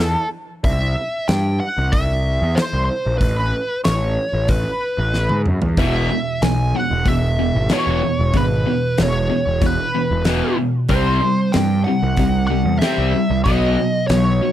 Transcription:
Already playing: picked electric bass E2, lead electric guitar B4
0.02 lead electric guitar A4
0.64 picked electric bass C2, lead electric guitar E5, kick, open hi-hat
1.28 picked electric bass G2, lead electric guitar G5, snare, open hi-hat
1.60 lead electric guitar F#5
1.78 picked electric bass C2
1.92 lead electric guitar E5, kick, open hi-hat
2.42 picked electric bass E2
2.55 lead electric guitar C5, snare, open hi-hat
2.73 picked electric bass C2
2.85 lead electric guitar C5
3.06 picked electric bass A#1
3.18 picked electric bass A1, lead electric guitar B4, kick, open hi-hat
3.84 picked electric bass A1, lead electric guitar C#5, snare, open hi-hat
4.33 picked electric bass A1
4.48 lead electric guitar B4, kick, open hi-hat
4.98 picked electric bass A1
5.14 snare
5.29 picked electric bass G#2, high tom
5.46 picked electric bass F#2, mid tom
5.62 picked electric bass E2, floor tom
5.77 picked electric bass E1, overdriven electric guitar E2 B2 E3, lead electric guitar E5, kick, open hi-hat
6.12 overdriven electric guitar E2 B2
6.42 picked electric bass B1, overdriven electric guitar E2 B2, lead electric guitar G#5, snare, open hi-hat
6.75 overdriven electric guitar E2 B2, lead electric guitar F#5
6.91 picked electric bass E1
7.06 overdriven electric guitar E2 B2, lead electric guitar E5, kick, open hi-hat
7.39 overdriven electric guitar E2 B2
7.55 picked electric bass G#1
7.69 overdriven electric guitar E2 B2 E3, lead electric guitar C#5, snare, open hi-hat
7.87 picked electric bass E1
8.02 overdriven electric guitar E2 B2
8.19 picked electric bass E1
8.34 picked electric bass G#1, overdriven electric guitar E2 B2, lead electric guitar B4, kick, open hi-hat
8.66 overdriven electric guitar E2 B2
8.98 picked electric bass E1, overdriven electric guitar E2 B2, snare, open hi-hat
9.03 lead electric guitar C#5
9.30 overdriven electric guitar E2 B2
9.47 picked electric bass E1
9.61 overdriven electric guitar E2 B2, kick, open hi-hat
9.66 lead electric guitar B4
9.95 overdriven electric guitar E2 B2
10.11 picked electric bass E1
10.25 overdriven electric guitar E2 B2 E3, snare, open hi-hat
10.58 overdriven electric guitar E2 B2
10.89 picked electric bass C2, overdriven electric guitar C3 G3 C4, lead electric guitar C5, kick, open hi-hat
11.22 overdriven electric guitar C3 G3
11.52 picked electric bass G2, overdriven electric guitar C3 G3, lead electric guitar G5, snare, open hi-hat
11.84 overdriven electric guitar C3 G3, lead electric guitar F#5
12.03 picked electric bass C2
12.17 overdriven electric guitar C3 G3, kick, open hi-hat
12.47 overdriven electric guitar C3, lead electric guitar F#5
12.51 overdriven electric guitar G3
12.65 picked electric bass E2
12.79 overdriven electric guitar C3 G3, lead electric guitar E5, snare, open hi-hat
12.83 overdriven electric guitar C4
12.98 picked electric bass C2
13.16 overdriven electric guitar C3 G3
13.30 picked electric bass C2
13.44 picked electric bass B1, overdriven electric guitar B2 F#3, lead electric guitar D#5, kick, open hi-hat
13.48 overdriven electric guitar B3
13.79 overdriven electric guitar B2 F#3
14.07 picked electric bass B1, overdriven electric guitar B2 F#3, lead electric guitar C#5, snare, open hi-hat
14.43 overdriven electric guitar B2 F#3

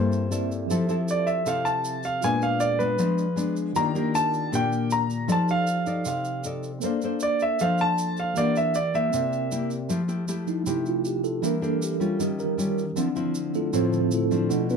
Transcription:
Already playing: nylon-string guitar G2 A#3 E4 A4, tine electric piano C4 G4 A4 D5 E5, grand piano C5
0.12 shaker
0.30 nylon-string guitar A#3 E4 A4, tine electric piano C4 G4 A4 D5 E5, shaker
0.51 shaker
0.66 tine electric piano F3 G4 A4, nylon-string guitar F3 C4, shaker
0.71 nylon-string guitar E4 A4, tine electric piano C5 E5
0.89 nylon-string guitar C4 E4 A4, shaker
1.08 grand piano D5, shaker
1.27 grand piano E5, shaker
1.46 nylon-string guitar C3 C4 E4 A4, grand piano F5, shaker
1.65 grand piano A5, shaker
1.85 shaker
2.03 grand piano F5, shaker
2.21 nylon-string guitar A#2 G#3 B3 D4, tine electric piano F4 G#4 B4, grand piano G#5, shaker
2.26 tine electric piano D5
2.42 grand piano F5, shaker
2.60 grand piano D5, shaker
2.79 nylon-string guitar G#3 B3 D4, grand piano B4, shaker
2.99 nylon-string guitar F3 G#3 B3 D4, shaker
3.18 shaker
3.36 nylon-string guitar G#3 B3 D4, shaker
3.56 shaker
3.73 tine electric piano D#3 F4 G4, nylon-string guitar D#3 A#3 D4 G4, grand piano A#5, shaker
3.78 tine electric piano A#4 D5
3.95 nylon-string guitar A#3 D4 G4, shaker
4.15 grand piano A5, shaker
4.34 shaker
4.52 nylon-string guitar A#2 A#3 D4 G4, grand piano G5, shaker
4.72 shaker
4.90 grand piano A#5, shaker
5.10 shaker
5.27 tine electric piano F3 D#4 G4 A4, nylon-string guitar F3 D#4 A4 D5, shaker
5.32 tine electric piano C5 D5, grand piano A5
5.48 grand piano F5, shaker
5.67 shaker
5.86 nylon-string guitar D#4 A4 D5, shaker
6.05 nylon-string guitar C3, grand piano F5, shaker
6.25 shaker
6.44 nylon-string guitar D#4 A4 D5, shaker
6.63 shaker
6.80 tine electric piano A#3 A4 C5, nylon-string guitar A#3 D4 A4, shaker
6.84 nylon-string guitar C5, tine electric piano D5 F5
7.01 nylon-string guitar D4 A4 C5, shaker
7.20 grand piano D5, shaker
7.40 grand piano E5, shaker
7.59 nylon-string guitar F3 D4 A4 C5, grand piano F5, shaker
7.78 grand piano A5, shaker
7.98 shaker
8.17 grand piano F5, shaker
8.34 tine electric piano E3 G4 A#4 D5, nylon-string guitar E3 A#3 G4, grand piano D5, shaker
8.38 nylon-string guitar D4, tine electric piano F#5
8.56 grand piano E5, shaker
8.74 grand piano D5, shaker
8.94 nylon-string guitar A#3 E4 G4, grand piano E5, shaker
9.10 nylon-string guitar C3, tine electric piano C4 G4 A#4, shaker
9.15 tine electric piano D5 E5
9.33 shaker
9.51 nylon-string guitar A#3 E4 G4, shaker
9.70 shaker
9.89 nylon-string guitar F3 A3 E4 G4, shaker
10.08 nylon-string guitar A3 E4 G4, shaker
10.28 nylon-string guitar A3 E4 G4, shaker
10.47 tine electric piano F3 A3 D#4 E4, shaker
10.66 nylon-string guitar C3 A3 E4 G4, tine electric piano E4, shaker
10.86 tine electric piano F4, shaker
11.05 tine electric piano G4, shaker
11.24 tine electric piano A4, shaker
11.42 tine electric piano E3 G3 D4 A#4, nylon-string guitar E3 A#3 D4 G4, shaker
11.61 nylon-string guitar A#3 D4 G4, tine electric piano A4, shaker
11.82 tine electric piano G4, shaker
12.00 nylon-string guitar G3 C#4 F4, tine electric piano F4, shaker
12.20 tine electric piano D#3 G3 C#4 G4, nylon-string guitar D#3, shaker
12.39 tine electric piano A#4, shaker
12.58 nylon-string guitar G3 C#4 F4, shaker
12.78 shaker
12.96 nylon-string guitar D3 F3 C4 E4, tine electric piano D3 F3 C4, shaker
13.15 nylon-string guitar F3 C4 E4, shaker
13.35 shaker
13.54 tine electric piano A3 E4 F4 A4, shaker
13.73 nylon-string guitar A2 F3 C4 E4, tine electric piano C4 F4 A4 C5, shaker
13.92 tine electric piano D3 F3 C4, shaker
14.11 tine electric piano A3 E4 F4 A4, shaker
14.31 nylon-string guitar F3 A3 D4, shaker
14.49 nylon-string guitar B2, tine electric piano B2 A3 D4, shaker
14.70 tine electric piano B3 D4 F4 B4, shaker

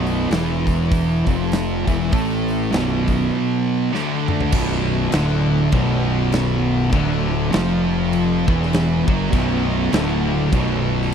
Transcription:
Already playing: fingered electric bass B0, distorted electric guitar B1 B2
0.06 open hi-hat
0.30 fingered electric bass E1, distorted electric guitar E2 E3, snare, open hi-hat
0.67 kick, open hi-hat
0.92 kick, open hi-hat
1.25 fingered electric bass F1, distorted electric guitar F2 F3, kick, open hi-hat
1.52 snare, open hi-hat
1.85 fingered electric bass E1, distorted electric guitar E2 E3, kick, open hi-hat
2.12 fingered electric bass A1, distorted electric guitar A2 A3, kick, open hi-hat
2.48 open hi-hat
2.71 fingered electric bass B0, distorted electric guitar B1 B2, snare, open hi-hat
3.07 kick, open hi-hat
3.92 distorted electric guitar D2 D3, snare
4.28 mid tom
4.40 floor tom
4.52 fingered electric bass B0, distorted electric guitar B1 B2, kick, crash
5.12 fingered electric bass D1, distorted electric guitar D2 D3, snare, crash
5.72 fingered electric bass B0, distorted electric guitar B1 B2, kick, crash
6.32 snare, crash
6.92 fingered electric bass D1, distorted electric guitar D2 D3, kick, crash
7.51 fingered electric bass F1, distorted electric guitar F2 F3, snare, crash
8.13 crash
8.48 fingered electric bass E1, distorted electric guitar E2 E3, kick
8.62 snare
8.73 snare, crash
9.08 fingered electric bass F#1, distorted electric guitar F#2 F#3, kick
9.33 fingered electric bass B0, distorted electric guitar B1 B2, kick, crash
9.93 fingered electric bass D1, distorted electric guitar D2 D3, snare, crash
10.52 fingered electric bass B0, distorted electric guitar B1 B2, kick, crash
11.02 snare

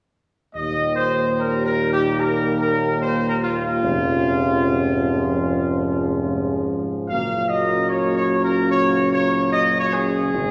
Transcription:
0.55 tuba D#2, trombone section A#2 G3, french horn section A#3 G4, trumpet section D#5
0.96 trumpet section C5
1.39 trumpet section A#4
1.66 trumpet section A#4
1.93 trumpet section G4
2.20 trumpet section A#4
2.61 trumpet section A#4
3.02 trumpet section C5
3.29 trumpet section A#4
3.43 trumpet section F4
3.83 tuba F1, trombone section F3, french horn section C#4 G#4
4.66 trombone section G#2
7.09 tuba F#1, trombone section A#2 A#3, french horn section C#4 F#4, trumpet section F5
7.49 trumpet section D#5
7.89 trumpet section C#5
8.17 trumpet section C#5
8.45 trumpet section A#4
8.71 trumpet section C#5
9.12 trumpet section C#5
9.53 trumpet section D#5
9.80 trumpet section C#5
9.94 trumpet section G#4
10.33 tuba G#1, trombone section D#3 G#3, french horn section C4 D#4

